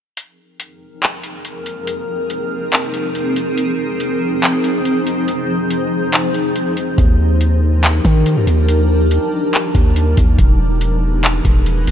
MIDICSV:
0, 0, Header, 1, 4, 480
1, 0, Start_track
1, 0, Tempo, 425532
1, 194, Time_signature, 4, 2, 24, 8
1, 13438, End_track
2, 0, Start_track
2, 0, Title_t, "Ambient pad"
2, 0, Program_c, 0, 92
2, 194, Note_on_c, 0, 60, 73
2, 195, Note_on_c, 0, 53, 80
2, 195, Note_on_c, 0, 63, 78
2, 195, Note_on_c, 0, 68, 76
2, 195, Note_on_c, 0, 70, 93
2, 3996, Note_off_c, 0, 70, 0
2, 4035, Note_on_c, 0, 72, 88
2, 7829, Note_off_c, 0, 60, 0
2, 7829, Note_off_c, 0, 68, 0
2, 7836, Note_off_c, 0, 72, 0
2, 7879, Note_on_c, 0, 62, 72
2, 7879, Note_on_c, 0, 67, 76
2, 7880, Note_on_c, 0, 70, 90
2, 11669, Note_off_c, 0, 53, 0
2, 11669, Note_off_c, 0, 63, 0
2, 11678, Note_off_c, 0, 62, 0
2, 11678, Note_off_c, 0, 67, 0
2, 11678, Note_off_c, 0, 70, 0
2, 11717, Note_on_c, 0, 59, 76
2, 11717, Note_on_c, 0, 63, 75
2, 11717, Note_on_c, 0, 68, 76
2, 11717, Note_on_c, 0, 71, 87
2, 11718, Note_on_c, 0, 52, 82
2, 13438, Note_off_c, 0, 52, 0
2, 13438, Note_off_c, 0, 59, 0
2, 13438, Note_off_c, 0, 63, 0
2, 13438, Note_off_c, 0, 68, 0
2, 13438, Note_off_c, 0, 71, 0
2, 13438, End_track
3, 0, Start_track
3, 0, Title_t, "808-style bass"
3, 0, Program_c, 1, 38
3, 7874, Note_on_c, 1, 39, 114
3, 9029, Note_off_c, 1, 39, 0
3, 9076, Note_on_c, 1, 51, 104
3, 9436, Note_on_c, 1, 43, 95
3, 9453, Note_off_c, 1, 51, 0
3, 9549, Note_off_c, 1, 43, 0
3, 9557, Note_on_c, 1, 39, 102
3, 10362, Note_off_c, 1, 39, 0
3, 10995, Note_on_c, 1, 39, 104
3, 11455, Note_off_c, 1, 39, 0
3, 11478, Note_on_c, 1, 39, 98
3, 11706, Note_off_c, 1, 39, 0
3, 11714, Note_on_c, 1, 28, 110
3, 12869, Note_off_c, 1, 28, 0
3, 12913, Note_on_c, 1, 28, 103
3, 13374, Note_off_c, 1, 28, 0
3, 13396, Note_on_c, 1, 28, 98
3, 13438, Note_off_c, 1, 28, 0
3, 13438, End_track
4, 0, Start_track
4, 0, Title_t, "Drums"
4, 193, Note_on_c, 9, 42, 82
4, 306, Note_off_c, 9, 42, 0
4, 673, Note_on_c, 9, 42, 84
4, 786, Note_off_c, 9, 42, 0
4, 1150, Note_on_c, 9, 42, 74
4, 1164, Note_on_c, 9, 39, 111
4, 1263, Note_off_c, 9, 42, 0
4, 1277, Note_off_c, 9, 39, 0
4, 1393, Note_on_c, 9, 42, 70
4, 1506, Note_off_c, 9, 42, 0
4, 1633, Note_on_c, 9, 42, 68
4, 1746, Note_off_c, 9, 42, 0
4, 1872, Note_on_c, 9, 42, 74
4, 1985, Note_off_c, 9, 42, 0
4, 2113, Note_on_c, 9, 42, 83
4, 2226, Note_off_c, 9, 42, 0
4, 2594, Note_on_c, 9, 42, 80
4, 2707, Note_off_c, 9, 42, 0
4, 3069, Note_on_c, 9, 42, 75
4, 3083, Note_on_c, 9, 39, 106
4, 3182, Note_off_c, 9, 42, 0
4, 3196, Note_off_c, 9, 39, 0
4, 3313, Note_on_c, 9, 42, 67
4, 3426, Note_off_c, 9, 42, 0
4, 3553, Note_on_c, 9, 42, 69
4, 3666, Note_off_c, 9, 42, 0
4, 3794, Note_on_c, 9, 42, 73
4, 3907, Note_off_c, 9, 42, 0
4, 4033, Note_on_c, 9, 42, 83
4, 4146, Note_off_c, 9, 42, 0
4, 4513, Note_on_c, 9, 42, 81
4, 4626, Note_off_c, 9, 42, 0
4, 4991, Note_on_c, 9, 42, 72
4, 5005, Note_on_c, 9, 39, 107
4, 5103, Note_off_c, 9, 42, 0
4, 5117, Note_off_c, 9, 39, 0
4, 5234, Note_on_c, 9, 42, 69
4, 5347, Note_off_c, 9, 42, 0
4, 5475, Note_on_c, 9, 42, 69
4, 5587, Note_off_c, 9, 42, 0
4, 5714, Note_on_c, 9, 42, 73
4, 5827, Note_off_c, 9, 42, 0
4, 5955, Note_on_c, 9, 42, 84
4, 6068, Note_off_c, 9, 42, 0
4, 6435, Note_on_c, 9, 42, 83
4, 6548, Note_off_c, 9, 42, 0
4, 6910, Note_on_c, 9, 42, 73
4, 6925, Note_on_c, 9, 39, 107
4, 7023, Note_off_c, 9, 42, 0
4, 7037, Note_off_c, 9, 39, 0
4, 7156, Note_on_c, 9, 42, 69
4, 7268, Note_off_c, 9, 42, 0
4, 7396, Note_on_c, 9, 42, 70
4, 7509, Note_off_c, 9, 42, 0
4, 7635, Note_on_c, 9, 42, 70
4, 7748, Note_off_c, 9, 42, 0
4, 7874, Note_on_c, 9, 42, 78
4, 7875, Note_on_c, 9, 36, 126
4, 7987, Note_off_c, 9, 36, 0
4, 7987, Note_off_c, 9, 42, 0
4, 8355, Note_on_c, 9, 42, 78
4, 8468, Note_off_c, 9, 42, 0
4, 8833, Note_on_c, 9, 42, 76
4, 8847, Note_on_c, 9, 39, 109
4, 8945, Note_off_c, 9, 42, 0
4, 8959, Note_off_c, 9, 39, 0
4, 9075, Note_on_c, 9, 36, 91
4, 9077, Note_on_c, 9, 42, 66
4, 9188, Note_off_c, 9, 36, 0
4, 9190, Note_off_c, 9, 42, 0
4, 9318, Note_on_c, 9, 42, 72
4, 9430, Note_off_c, 9, 42, 0
4, 9557, Note_on_c, 9, 42, 75
4, 9670, Note_off_c, 9, 42, 0
4, 9797, Note_on_c, 9, 42, 82
4, 9909, Note_off_c, 9, 42, 0
4, 10276, Note_on_c, 9, 42, 79
4, 10389, Note_off_c, 9, 42, 0
4, 10752, Note_on_c, 9, 42, 76
4, 10766, Note_on_c, 9, 39, 111
4, 10865, Note_off_c, 9, 42, 0
4, 10879, Note_off_c, 9, 39, 0
4, 10995, Note_on_c, 9, 36, 92
4, 10995, Note_on_c, 9, 42, 71
4, 11107, Note_off_c, 9, 42, 0
4, 11108, Note_off_c, 9, 36, 0
4, 11236, Note_on_c, 9, 42, 72
4, 11349, Note_off_c, 9, 42, 0
4, 11475, Note_on_c, 9, 42, 74
4, 11477, Note_on_c, 9, 36, 92
4, 11588, Note_off_c, 9, 42, 0
4, 11590, Note_off_c, 9, 36, 0
4, 11714, Note_on_c, 9, 36, 126
4, 11714, Note_on_c, 9, 42, 81
4, 11827, Note_off_c, 9, 36, 0
4, 11827, Note_off_c, 9, 42, 0
4, 12194, Note_on_c, 9, 42, 85
4, 12307, Note_off_c, 9, 42, 0
4, 12670, Note_on_c, 9, 42, 72
4, 12684, Note_on_c, 9, 39, 107
4, 12783, Note_off_c, 9, 42, 0
4, 12797, Note_off_c, 9, 39, 0
4, 12913, Note_on_c, 9, 42, 69
4, 12914, Note_on_c, 9, 36, 93
4, 13026, Note_off_c, 9, 36, 0
4, 13026, Note_off_c, 9, 42, 0
4, 13154, Note_on_c, 9, 42, 68
4, 13267, Note_off_c, 9, 42, 0
4, 13394, Note_on_c, 9, 42, 74
4, 13438, Note_off_c, 9, 42, 0
4, 13438, End_track
0, 0, End_of_file